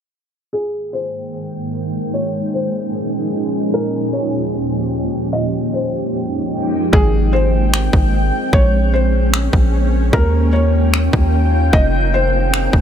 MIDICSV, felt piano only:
0, 0, Header, 1, 2, 480
1, 0, Start_track
1, 0, Key_signature, -4, "major"
1, 0, Tempo, 400000
1, 637, Time_signature, 4, 2, 24, 8
1, 15372, End_track
2, 0, Start_track
2, 0, Title_t, "Felt piano"
2, 0, Program_c, 0, 0
2, 635, Note_on_c, 0, 68, 97
2, 1087, Note_off_c, 0, 68, 0
2, 1118, Note_on_c, 0, 72, 77
2, 1569, Note_off_c, 0, 72, 0
2, 2565, Note_on_c, 0, 73, 84
2, 3013, Note_off_c, 0, 73, 0
2, 3046, Note_on_c, 0, 72, 71
2, 3493, Note_off_c, 0, 72, 0
2, 4486, Note_on_c, 0, 70, 101
2, 4933, Note_off_c, 0, 70, 0
2, 4956, Note_on_c, 0, 73, 80
2, 5408, Note_off_c, 0, 73, 0
2, 6394, Note_on_c, 0, 75, 107
2, 6847, Note_off_c, 0, 75, 0
2, 6888, Note_on_c, 0, 72, 74
2, 7795, Note_off_c, 0, 72, 0
2, 8313, Note_on_c, 0, 68, 104
2, 8766, Note_off_c, 0, 68, 0
2, 8794, Note_on_c, 0, 72, 75
2, 9247, Note_off_c, 0, 72, 0
2, 10242, Note_on_c, 0, 73, 90
2, 10691, Note_off_c, 0, 73, 0
2, 10723, Note_on_c, 0, 72, 75
2, 11171, Note_off_c, 0, 72, 0
2, 12162, Note_on_c, 0, 70, 97
2, 12611, Note_off_c, 0, 70, 0
2, 12632, Note_on_c, 0, 73, 80
2, 13086, Note_off_c, 0, 73, 0
2, 14076, Note_on_c, 0, 75, 107
2, 14528, Note_off_c, 0, 75, 0
2, 14569, Note_on_c, 0, 72, 80
2, 15372, Note_off_c, 0, 72, 0
2, 15372, End_track
0, 0, End_of_file